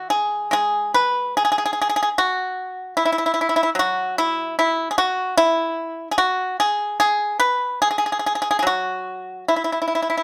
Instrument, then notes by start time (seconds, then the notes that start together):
pipa
Already playing: E3
0.10 G#4
0.51 G#3 G#4
0.94 B4
1.37 G#4
1.45 G#4
1.52 G#4
1.58 G#4
1.66 G#4
1.73 G#4
1.82 G#4
1.89 G#4
1.96 G#4
2.03 G#4
2.18 F#4
2.97 E4
3.05 E4
3.12 E4
3.18 E4
3.26 E4
3.34 E4
3.41 E4
3.49 E4
3.56 E4
3.63 E4
3.75 F#3
3.79 F#4
4.18 E4
4.59 E4
4.91 G#4
4.98 F#4
5.37 E4
6.11 G#4
6.18 F#4
6.60 G#4
7.00 G#4
7.40 B4
7.82 G#4
7.91 G#4
7.98 G#4
8.06 G#4
8.12 G#4
8.19 G#4
8.26 G#4
8.35 G#4
8.42 G#4
8.51 G#4
8.59 F#3 G#4
8.67 F#4
9.48 E4
9.56 E4
9.64 E4
9.72 E4
9.82 E4
9.88 E4
9.95 E4
10.02 E4
10.10 E4
10.17 E4